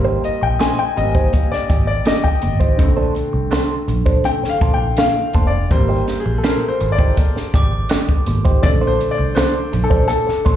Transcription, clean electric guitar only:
0.05 D#4 G4 C5
0.23 muted clean electric guitar stroke
0.41 muted clean electric guitar stroke
0.59 D#4 G4 C5
0.96 muted clean electric guitar stroke
1.15 D#4 G4 C5
1.52 muted clean electric guitar stroke
1.70 D#4 G4 D5
1.88 muted clean electric guitar stroke
2.06 D#4 G4 D5
2.42 muted clean electric guitar stroke
2.60 D#4 G4 C5
2.78 muted clean electric guitar stroke
2.97 D4 A4 C5
3.15 muted clean electric guitar stroke
3.33 muted clean electric guitar stroke
3.51 D4 A4 C5
3.87 muted clean electric guitar stroke
4.06 D4 A4 C5
4.25 muted clean electric guitar stroke
4.43 muted clean electric guitar stroke
4.61 D4 A4 C5
4.80 muted clean electric guitar stroke
4.98 muted clean electric guitar stroke
5.34 D4 A4 C5
5.70 muted clean electric guitar stroke
5.89 D#4 G4 C5
6.26 muted clean electric guitar stroke
6.44 D#4 G4 C5
6.80 muted clean electric guitar stroke
6.99 D#4 G4 C5
7.17 muted clean electric guitar stroke
7.36 muted clean electric guitar stroke
7.54 D#4 G4 D5
7.73 muted clean electric guitar stroke
7.90 D#4 G4 D5
8.27 muted clean electric guitar stroke
8.45 D#4 G4 C5
8.81 D4 A4 C5
9.18 muted clean electric guitar stroke
9.36 D4 A4 C5
9.72 muted clean electric guitar stroke
9.90 D4 A4 C5
10.27 muted clean electric guitar stroke
10.45 D4 A4 C5

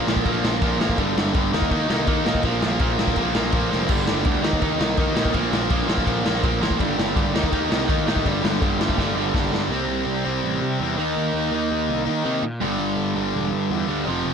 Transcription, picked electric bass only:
0.06 A#1
0.26 A#1
0.43 A#1
0.62 A#1
0.80 A1
0.98 G1
1.17 G1
1.35 G1
1.54 D#2
1.71 D#2
1.90 C2
2.08 D#3
2.28 A#2
2.44 A#1
2.64 A#1
2.80 A#1
3.00 A#1
3.17 A#1
3.36 A#1
3.53 A#1
3.72 F1
3.89 G1
4.08 G1
4.26 D2
4.43 D#2
4.62 D#2
4.80 C2
4.98 D#3
5.16 A#2
5.34 A#1
5.52 A#1
5.70 A#1
5.89 A#1
6.07 A#1
6.24 A#1
6.43 A#1
6.61 A1
6.80 G1
6.97 G1
7.16 G1
7.33 D#2
7.52 D#2
7.70 C2
7.90 D#3
8.07 A2
8.25 G1
8.44 G1
8.62 G1
8.79 G1
8.98 G1
9.16 G1
9.34 G1
9.51 G1
9.69 C2
9.88 C2
10.07 C2
10.26 C2
10.44 A1
10.62 C3
10.80 E2
10.98 D#2
11.17 D#2
11.34 D#2
11.52 D#2
11.71 D#2
11.89 C2
12.08 D#3
12.26 C3
12.43 A#2
12.62 G1
12.79 G1
12.98 G1
13.16 G1
13.34 E1
13.52 G2
13.71 E2
13.88 D2
14.07 F1
14.25 F1

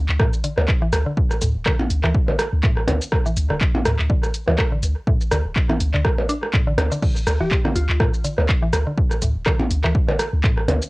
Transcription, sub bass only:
0.09 D2
0.58 D2
0.93 D2
1.42 D2
1.55 D1
1.90 D2
2.04 D2
2.53 D2
2.88 D2
3.37 D2
3.50 D1
3.85 D2
3.99 D2
4.48 D2
4.83 D2
5.32 D2
5.45 D1
5.80 D2
5.94 D2
6.78 D2
7.27 D2
7.41 D1
7.76 D2
7.89 D2
8.38 D2
8.73 D2
9.22 D2
9.36 D1
9.71 D2
9.84 D2
10.33 D2
10.68 D2

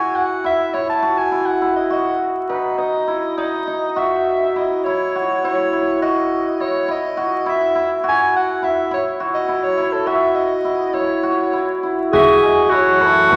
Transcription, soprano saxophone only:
Already playing: G#5
0.16 F#5
0.46 E5
0.74 C#5
0.89 A5
1.18 G#5
1.46 F#5
1.76 D#5
1.92 D#5
2.49 B4
2.79 D#5
3.39 D#5
3.97 E5
4.57 D#5
4.84 C#5
5.45 C#5
6.02 D#5
6.61 C#5
6.91 D#5
7.49 E5
8.09 G#5
8.36 F#5
8.64 E5
8.94 C#5
9.34 D#5
9.64 C#5
9.92 A4
10.07 E5
10.35 D#5
10.94 C#5
12.15 E5
12.45 D#5
12.74 C#5
13.02 A4
13.31 B4

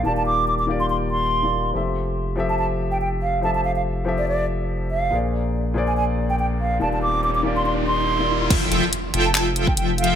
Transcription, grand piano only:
0.03 D#3 A#3 F4 G4
0.07 D5
0.67 D#3 A#3 F4 G4 D5
1.43 D#3 A#3 F4 G4 D5
1.72 F3 C4 G4 A4 E5
2.36 F3 C4 G4 A4
2.40 E5
3.41 F3 C4 G4 A4 E5
4.05 F3 C4 G4 A4 E5
5.10 A#2 A#3 G#4 C5
5.14 D5
5.74 A#2 A#3 G#4 C5
5.78 D5
6.80 D#3 A#3 F4 G4 D5
7.43 D#3 A#3 F4 G4 D5
8.19 D#3 A#3 F4 G4 D5

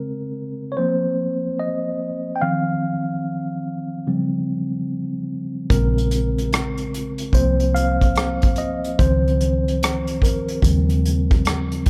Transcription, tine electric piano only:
Already playing: C#3 G#3 C4 A#4
0.72 C#5
0.77 F3 A#3 C4 C5
1.59 D#5
2.36 G5
2.42 D#3 F3 C4 F5
4.07 C#3 F3 G3 C4
5.70 C#3 G#3 C4 A#4
7.34 F3 A#3 C4 C5
7.75 F5
8.58 D#5
8.99 D#3 F3 C4 C5
10.23 A#4
10.64 C#3 F3 G3 C4

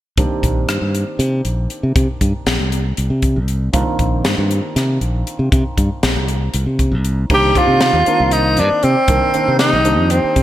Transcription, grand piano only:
0.18 D#3 A#3 C4 D4 G4
3.73 D#3 A#3 C4 D4 F4
7.30 D#3 A#3 C4 D4 G4
7.55 D#3 A#3 C4 D4 G4
8.07 D#3 A#3 C4 D4 A#4
9.09 D#3 A#3 C4 D4 A#4
9.34 D#3 A#3 C4 D4 A#4
9.85 D#3 A#3 C4 D4 G4

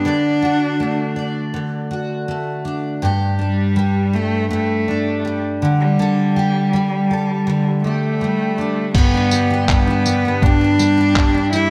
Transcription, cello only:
Already playing: D4
3.40 G3
4.15 A3
4.52 A3
5.81 G3
7.85 A3
8.95 B3
9.68 B3
10.43 D4
11.53 E4

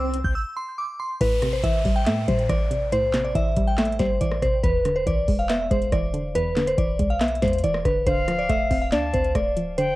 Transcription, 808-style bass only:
Already playing: C2
0.24 C2
1.21 A1
1.64 A1
1.85 A1
2.07 A2
2.28 A2
2.49 A1
2.92 B1
3.14 A1
3.35 A1
3.57 A1
4.00 G1
4.21 A1
4.42 A1
4.64 E1
5.07 B1
5.28 E1
5.71 E1
5.92 E1
6.78 E1
7.00 B1
7.42 E2
7.64 E1
7.85 E1
8.07 D1
8.49 D1
8.71 D1
8.92 D2
9.14 D2
9.35 D1
9.78 E1

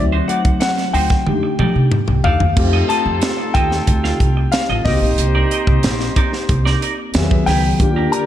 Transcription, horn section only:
2.57 D#4 F4 A4
4.86 D#4 G4 C5
7.15 G#4 B4 E5
7.80 G4 A#4 D5

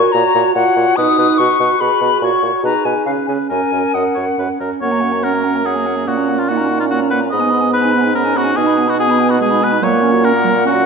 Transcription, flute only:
Already playing: C#6
0.12 A#5
0.55 F#5
0.96 D#6
1.38 C#6
1.81 B5
2.22 C#6
2.64 A#5
2.85 G#5
3.05 F5
3.27 G#5
3.49 G#5
3.95 F#5
4.82 F#5
4.92 A#5
5.01 F#5
5.12 A#5
5.22 F#5
5.34 A#5
5.44 F#5
5.56 A#5
5.65 F#5
5.76 A#5
5.86 F#5
5.96 A#5
6.07 F#5
6.18 A#5
6.29 F#5
6.39 A#5
6.47 F#5
6.57 A#5
6.68 F#5
6.79 A#5
6.89 F#5
7.00 A#5
7.10 F#5
7.20 A#5
7.32 B5
7.40 G#5
7.50 B5
7.61 G#5
7.72 B5
7.82 G#5
7.92 B5
8.01 G#5
8.14 B5
8.24 G#5
8.35 B5
8.44 G#5
8.54 G#5
8.67 B5
8.77 G#5
8.88 B5
8.99 G#5
9.10 B5
9.19 G#5
9.29 B5
9.40 G#5
9.50 B5
9.62 G#5
9.73 B5
9.83 F#5

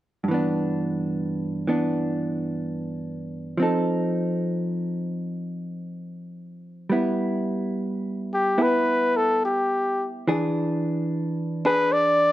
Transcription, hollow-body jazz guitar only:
0.24 G2
0.28 E3 B3
0.34 D4
1.67 E3 B3 D4
3.58 F3 C4
3.62 D#4 A4
6.90 G3 B3 E4
8.58 B3 E4
10.28 E3 D4 G#4
11.65 D4 G#4

